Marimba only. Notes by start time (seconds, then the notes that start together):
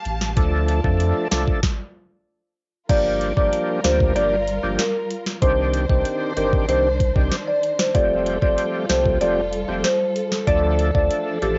2.90 D5
3.37 D5
3.84 C5
4.16 D5
4.79 A#4
5.42 C5
5.89 C5
6.37 A#4
6.69 C5
7.47 D5
7.79 C5
7.95 D5
8.42 D5
8.90 C5
9.21 D5
9.84 C5
10.47 D5
10.95 D5
11.42 G4